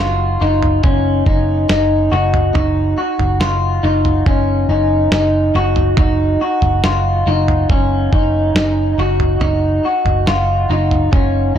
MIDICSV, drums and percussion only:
0, 0, Header, 1, 2, 480
1, 0, Start_track
1, 0, Tempo, 857143
1, 1432, Time_signature, 4, 2, 24, 8
1, 6486, End_track
2, 0, Start_track
2, 0, Title_t, "Drums"
2, 350, Note_on_c, 9, 43, 55
2, 406, Note_off_c, 9, 43, 0
2, 467, Note_on_c, 9, 43, 53
2, 469, Note_on_c, 9, 36, 73
2, 523, Note_off_c, 9, 43, 0
2, 525, Note_off_c, 9, 36, 0
2, 708, Note_on_c, 9, 36, 80
2, 764, Note_off_c, 9, 36, 0
2, 949, Note_on_c, 9, 38, 89
2, 1005, Note_off_c, 9, 38, 0
2, 1309, Note_on_c, 9, 43, 58
2, 1365, Note_off_c, 9, 43, 0
2, 1429, Note_on_c, 9, 43, 97
2, 1485, Note_off_c, 9, 43, 0
2, 1789, Note_on_c, 9, 43, 52
2, 1845, Note_off_c, 9, 43, 0
2, 1908, Note_on_c, 9, 38, 96
2, 1964, Note_off_c, 9, 38, 0
2, 2268, Note_on_c, 9, 43, 58
2, 2324, Note_off_c, 9, 43, 0
2, 2387, Note_on_c, 9, 43, 51
2, 2388, Note_on_c, 9, 36, 73
2, 2443, Note_off_c, 9, 43, 0
2, 2444, Note_off_c, 9, 36, 0
2, 2866, Note_on_c, 9, 38, 92
2, 2922, Note_off_c, 9, 38, 0
2, 3225, Note_on_c, 9, 43, 57
2, 3281, Note_off_c, 9, 43, 0
2, 3343, Note_on_c, 9, 43, 97
2, 3348, Note_on_c, 9, 36, 94
2, 3399, Note_off_c, 9, 43, 0
2, 3404, Note_off_c, 9, 36, 0
2, 3707, Note_on_c, 9, 43, 55
2, 3763, Note_off_c, 9, 43, 0
2, 3829, Note_on_c, 9, 38, 93
2, 3885, Note_off_c, 9, 38, 0
2, 4191, Note_on_c, 9, 43, 58
2, 4247, Note_off_c, 9, 43, 0
2, 4310, Note_on_c, 9, 36, 73
2, 4310, Note_on_c, 9, 43, 54
2, 4366, Note_off_c, 9, 36, 0
2, 4366, Note_off_c, 9, 43, 0
2, 4551, Note_on_c, 9, 36, 88
2, 4607, Note_off_c, 9, 36, 0
2, 4793, Note_on_c, 9, 38, 99
2, 4849, Note_off_c, 9, 38, 0
2, 5151, Note_on_c, 9, 43, 55
2, 5207, Note_off_c, 9, 43, 0
2, 5270, Note_on_c, 9, 43, 91
2, 5326, Note_off_c, 9, 43, 0
2, 5632, Note_on_c, 9, 43, 56
2, 5688, Note_off_c, 9, 43, 0
2, 5753, Note_on_c, 9, 38, 90
2, 5809, Note_off_c, 9, 38, 0
2, 6112, Note_on_c, 9, 43, 58
2, 6168, Note_off_c, 9, 43, 0
2, 6232, Note_on_c, 9, 36, 81
2, 6232, Note_on_c, 9, 43, 52
2, 6288, Note_off_c, 9, 36, 0
2, 6288, Note_off_c, 9, 43, 0
2, 6486, End_track
0, 0, End_of_file